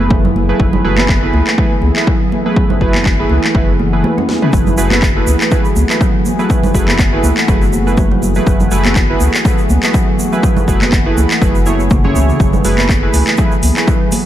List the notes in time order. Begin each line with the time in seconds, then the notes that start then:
Already playing: F#1 E3 A3 B3 E4 G#4
0.00 A3 E4 G#4 B4
0.10 F#3, kick, high conga
0.24 F#3, low conga
0.36 high conga
0.49 F#3 A3 E4 G#4 B4
0.60 F#1 F#3, kick
0.73 low conga
0.84 F#1 A3 E4 F#4 G#4 B4
0.98 B3, clap, high conga
1.09 kick, clap
1.23 A3 E4 G#4 B4
1.33 C#2 A3, high conga
1.47 A3, clap
1.58 F#3 A3 E4 G#4 B4, kick
1.82 C#2 B3, high conga
1.96 A3 E4 G#4 B4, clap
2.07 F#3, kick
2.21 F#3
2.32 high conga
2.46 F#3 A3 E4 G#4 B4
2.56 F#3, kick
2.70 low conga
2.81 F#1 A3 E4 F#4 G#4 B4, kick
2.94 B3, clap, high conga
3.06 kick, clap
3.19 A3 E4 G#4 B4
3.30 C#2 A3, high conga
3.44 A3, clap
3.55 F#1 F#3 A3 E4 G#4 B4, kick
3.79 E3, high conga
3.93 A3 E4 G#4 B4
4.04 A3, high conga
4.18 C#4, low conga
4.29 snare, high conga
4.42 A3 C#4 E4 G#4 B4, mid tom
4.53 F#1 F#3 F#4, kick, shaker
4.67 low conga, shaker
4.78 F#1 A3 E4 F#4 G#4 B4, shaker
4.91 B3, clap, high conga, shaker
5.02 kick, clap, shaker
5.16 A3 E4 G#4 B4
5.27 C#2 A3, high conga, shaker
5.41 A3, clap, shaker
5.51 F#3 A3 E4 G#4 B4, kick, shaker
5.65 shaker
5.76 C#2 B3, high conga, shaker
5.90 A3 E4 G#4 B4, clap, shaker
6.01 F#3, kick, shaker
6.15 F#3
6.26 high conga, shaker
6.39 F#3 A3 E4 G#4 B4, shaker
6.50 F#3, kick, shaker
6.64 low conga, shaker
6.75 F#1 A3 E4 F#4 G#4 B4, kick, shaker
6.88 B3, clap, high conga, shaker
6.99 kick, clap, shaker
7.13 A3 E4 G#4 B4
7.24 C#2 A3, high conga, shaker
7.37 A3, clap, shaker
7.48 F#1 F#3 A3 E4 G#4 B4, kick, shaker
7.62 shaker
7.73 B3, high conga, shaker
7.87 A3 E4 G#4 B4, shaker
7.97 F#3, kick, high conga, shaker
8.11 F#3, low conga
8.22 high conga, shaker
8.35 F#3 A3 E4 G#4 B4, shaker
8.46 F#1 F#3, kick, shaker
8.60 low conga, shaker
8.71 F#1 A3 E4 F#4 G#4 B4, shaker
8.84 B3, clap, high conga, shaker
8.96 kick, clap, shaker
9.09 A3 E4 G#4 B4
9.20 C#2 A3, high conga, shaker
9.34 A3, clap, shaker
9.45 F#3 A3 E4 G#4 B4, kick, shaker
9.58 shaker
9.69 C#2 B3, high conga, shaker
9.83 A3 E4 G#4 B4, clap, shaker
9.94 F#3, kick, shaker
10.08 F#3
10.19 high conga, shaker
10.32 F#3 A3 E4 G#4 B4, shaker
10.43 F#3, kick, shaker
10.57 low conga, shaker
10.68 F#1 A3 E4 F#4 G#4 B4, kick, shaker
10.82 B3, clap, high conga, shaker
10.92 kick, clap, shaker
11.06 A3 E4 G#4 B4
11.17 C#2 A3, high conga, shaker
11.30 A3, clap, shaker
11.41 F#1 F#3 A3 E4 G#4 B4, kick, shaker
11.55 shaker
11.66 A3 E4 G#4 C#5, high conga, shaker
11.80 shaker
11.90 C#3, kick, high conga, shaker
12.04 A3 C#4 E4 G#4 C#5, low conga
12.15 C#2 C#4, high conga, shaker
12.29 C#3, shaker
12.40 F#1 F#3 B4, kick, shaker
12.53 low conga, shaker
12.65 F#1 A3 E4 F#4 G#4 B4, open hi-hat, shaker
12.78 B3, clap, high conga, shaker
12.89 kick, clap, shaker
13.03 A3 E4 G#4 B4
13.14 C#2 A3, open hi-hat, high conga, shaker
13.27 A3, clap, shaker
13.37 F#3 A3 E4 G#4 B4, kick, shaker
13.52 shaker
13.63 C#2 B3, open hi-hat, high conga, shaker
13.77 A3 E4 G#4 B4, clap, shaker
13.87 F#3, kick, shaker
14.01 F#3
14.12 open hi-hat, high conga, shaker